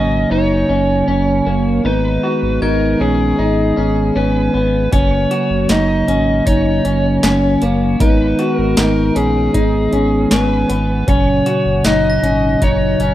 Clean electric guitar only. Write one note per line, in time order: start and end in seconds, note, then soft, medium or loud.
0.00 0.31 C#4 medium
0.31 0.69 D#4 medium
0.69 1.07 C#4 medium
1.08 1.46 C#4 medium
1.46 1.85 A#3 medium
1.85 2.23 D#4 medium
2.23 2.62 F#4 medium
2.62 3.00 D#4 medium
3.01 3.38 C#4 medium
3.39 3.77 D#4 medium
3.77 4.15 C#4 medium
4.16 4.54 C#4 medium
4.54 4.92 B3 medium
4.92 5.31 C#4 medium
5.31 5.69 F#4 medium
5.70 6.07 D#4 medium
6.08 6.46 C#4 medium
6.46 6.84 D#4 medium
6.85 7.22 C#4 medium
7.23 7.62 C#4 medium
7.62 8.00 A#3 medium
8.00 8.39 D#4 medium
8.39 8.77 F#4 medium
8.77 9.15 D#4 medium
9.15 9.54 C#4 medium
9.54 9.92 D#4 medium
9.93 10.30 C#4 medium
10.31 10.69 C#4 medium
10.69 11.07 B3 medium
11.08 11.46 C#4 medium
11.46 11.85 F#4 medium
11.85 12.23 D#4 medium
12.23 12.62 C#4 medium
12.62 13.00 D#4 medium
13.01 13.14 C#4 medium